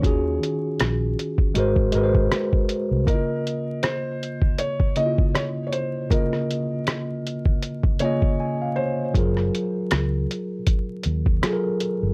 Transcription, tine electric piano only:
0, 0, Header, 1, 2, 480
1, 0, Start_track
1, 0, Key_signature, -5, "major"
1, 0, Tempo, 759494
1, 20, Time_signature, 4, 2, 24, 8
1, 7672, End_track
2, 0, Start_track
2, 0, Title_t, "Tine electric piano"
2, 0, Program_c, 0, 4
2, 0, Control_c, 0, 64, 127
2, 7, Note_on_c, 0, 51, 74
2, 13, Note_on_c, 0, 61, 73
2, 22, Note_on_c, 0, 65, 65
2, 28, Control_c, 0, 64, 0
2, 29, Note_on_c, 0, 66, 64
2, 37, Note_on_c, 0, 68, 88
2, 131, Control_c, 0, 64, 127
2, 912, Note_off_c, 0, 51, 0
2, 915, Note_off_c, 0, 61, 0
2, 919, Note_off_c, 0, 65, 0
2, 923, Note_off_c, 0, 66, 0
2, 927, Note_off_c, 0, 68, 0
2, 977, Note_on_c, 0, 56, 88
2, 987, Note_on_c, 0, 66, 80
2, 989, Control_c, 0, 64, 0
2, 997, Note_on_c, 0, 70, 88
2, 1008, Note_on_c, 0, 72, 97
2, 1105, Control_c, 0, 64, 127
2, 1203, Note_off_c, 0, 56, 0
2, 1208, Note_off_c, 0, 66, 0
2, 1213, Note_off_c, 0, 70, 0
2, 1214, Note_on_c, 0, 56, 86
2, 1218, Note_off_c, 0, 72, 0
2, 1224, Note_on_c, 0, 66, 69
2, 1234, Note_on_c, 0, 70, 76
2, 1244, Note_on_c, 0, 71, 72
2, 1278, Note_off_c, 0, 71, 0
2, 1286, Note_on_c, 0, 72, 93
2, 1891, Note_off_c, 0, 56, 0
2, 1895, Note_off_c, 0, 66, 0
2, 1900, Note_off_c, 0, 70, 0
2, 1927, Note_off_c, 0, 72, 0
2, 1927, Note_on_c, 0, 49, 75
2, 1937, Note_on_c, 0, 58, 63
2, 1947, Note_on_c, 0, 64, 53
2, 1948, Control_c, 0, 64, 0
2, 1957, Note_on_c, 0, 75, 86
2, 1989, Note_off_c, 0, 64, 0
2, 1989, Note_on_c, 0, 65, 67
2, 2055, Control_c, 0, 64, 127
2, 2832, Note_off_c, 0, 49, 0
2, 2837, Note_off_c, 0, 58, 0
2, 2847, Note_off_c, 0, 75, 0
2, 2863, Note_off_c, 0, 65, 0
2, 3136, Note_on_c, 0, 49, 76
2, 3147, Note_on_c, 0, 58, 54
2, 3156, Note_on_c, 0, 64, 46
2, 3166, Note_on_c, 0, 75, 78
2, 3194, Note_off_c, 0, 64, 0
2, 3198, Note_on_c, 0, 65, 63
2, 3812, Note_off_c, 0, 49, 0
2, 3817, Note_off_c, 0, 58, 0
2, 3827, Note_off_c, 0, 75, 0
2, 3843, Note_off_c, 0, 65, 0
2, 3852, Note_on_c, 0, 49, 77
2, 3861, Note_on_c, 0, 58, 64
2, 3870, Note_on_c, 0, 65, 71
2, 3881, Note_on_c, 0, 75, 78
2, 4754, Note_off_c, 0, 49, 0
2, 4759, Note_off_c, 0, 58, 0
2, 4763, Note_off_c, 0, 65, 0
2, 4769, Note_off_c, 0, 75, 0
2, 5058, Note_on_c, 0, 49, 81
2, 5067, Note_on_c, 0, 58, 75
2, 5071, Note_on_c, 0, 80, 60
2, 5078, Note_on_c, 0, 65, 71
2, 5086, Note_on_c, 0, 75, 100
2, 5289, Note_off_c, 0, 80, 0
2, 5309, Note_on_c, 0, 80, 64
2, 5429, Note_off_c, 0, 80, 0
2, 5446, Note_on_c, 0, 77, 56
2, 5540, Note_off_c, 0, 77, 0
2, 5543, Note_on_c, 0, 73, 71
2, 5733, Note_off_c, 0, 49, 0
2, 5737, Note_off_c, 0, 58, 0
2, 5743, Note_off_c, 0, 65, 0
2, 5747, Note_off_c, 0, 75, 0
2, 5765, Note_off_c, 0, 73, 0
2, 5776, Note_on_c, 0, 54, 82
2, 5785, Note_on_c, 0, 65, 70
2, 5787, Control_c, 0, 64, 0
2, 5796, Note_on_c, 0, 68, 65
2, 5806, Note_on_c, 0, 70, 73
2, 5894, Control_c, 0, 64, 127
2, 6676, Note_off_c, 0, 54, 0
2, 6681, Note_off_c, 0, 65, 0
2, 6686, Note_off_c, 0, 68, 0
2, 6691, Note_off_c, 0, 70, 0
2, 7217, Note_on_c, 0, 54, 68
2, 7227, Note_on_c, 0, 65, 65
2, 7237, Note_on_c, 0, 68, 66
2, 7247, Note_on_c, 0, 69, 60
2, 7279, Note_off_c, 0, 69, 0
2, 7287, Note_on_c, 0, 70, 80
2, 7668, Note_off_c, 0, 54, 0
2, 7672, Note_off_c, 0, 65, 0
2, 7672, Note_off_c, 0, 68, 0
2, 7672, Note_off_c, 0, 70, 0
2, 7672, End_track
0, 0, End_of_file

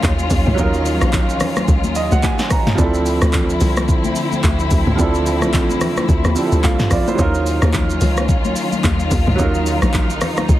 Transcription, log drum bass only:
0, 0, Header, 1, 2, 480
1, 0, Start_track
1, 0, Tempo, 550459
1, 508, Time_signature, 4, 2, 24, 8
1, 9239, End_track
2, 0, Start_track
2, 0, Title_t, "Log drum bass"
2, 0, Program_c, 0, 39
2, 29, Note_on_c, 0, 39, 93
2, 252, Note_off_c, 0, 39, 0
2, 267, Note_on_c, 0, 39, 97
2, 397, Note_off_c, 0, 39, 0
2, 407, Note_on_c, 0, 37, 90
2, 501, Note_off_c, 0, 37, 0
2, 507, Note_on_c, 0, 39, 107
2, 862, Note_off_c, 0, 39, 0
2, 887, Note_on_c, 0, 34, 97
2, 1205, Note_off_c, 0, 34, 0
2, 1467, Note_on_c, 0, 37, 106
2, 1606, Note_on_c, 0, 39, 87
2, 1619, Note_off_c, 0, 37, 0
2, 1831, Note_off_c, 0, 39, 0
2, 1847, Note_on_c, 0, 37, 94
2, 1941, Note_off_c, 0, 37, 0
2, 2428, Note_on_c, 0, 38, 114
2, 2782, Note_off_c, 0, 38, 0
2, 2807, Note_on_c, 0, 38, 103
2, 3126, Note_off_c, 0, 38, 0
2, 3148, Note_on_c, 0, 36, 98
2, 3597, Note_off_c, 0, 36, 0
2, 3869, Note_on_c, 0, 38, 101
2, 4093, Note_off_c, 0, 38, 0
2, 4108, Note_on_c, 0, 38, 101
2, 4238, Note_off_c, 0, 38, 0
2, 4245, Note_on_c, 0, 37, 92
2, 4340, Note_off_c, 0, 37, 0
2, 4348, Note_on_c, 0, 38, 114
2, 4725, Note_on_c, 0, 36, 90
2, 4738, Note_off_c, 0, 38, 0
2, 5044, Note_off_c, 0, 36, 0
2, 5308, Note_on_c, 0, 38, 94
2, 5438, Note_off_c, 0, 38, 0
2, 5447, Note_on_c, 0, 39, 97
2, 5541, Note_off_c, 0, 39, 0
2, 5685, Note_on_c, 0, 38, 92
2, 5780, Note_off_c, 0, 38, 0
2, 5789, Note_on_c, 0, 36, 103
2, 5918, Note_off_c, 0, 36, 0
2, 6027, Note_on_c, 0, 34, 95
2, 6157, Note_off_c, 0, 34, 0
2, 6268, Note_on_c, 0, 39, 121
2, 6622, Note_off_c, 0, 39, 0
2, 6646, Note_on_c, 0, 39, 112
2, 6965, Note_off_c, 0, 39, 0
2, 6986, Note_on_c, 0, 37, 93
2, 7436, Note_off_c, 0, 37, 0
2, 7709, Note_on_c, 0, 39, 98
2, 7933, Note_off_c, 0, 39, 0
2, 7947, Note_on_c, 0, 39, 100
2, 8077, Note_off_c, 0, 39, 0
2, 8084, Note_on_c, 0, 37, 89
2, 8180, Note_off_c, 0, 37, 0
2, 8187, Note_on_c, 0, 39, 112
2, 8542, Note_off_c, 0, 39, 0
2, 8565, Note_on_c, 0, 34, 97
2, 8884, Note_off_c, 0, 34, 0
2, 9147, Note_on_c, 0, 37, 106
2, 9239, Note_off_c, 0, 37, 0
2, 9239, End_track
0, 0, End_of_file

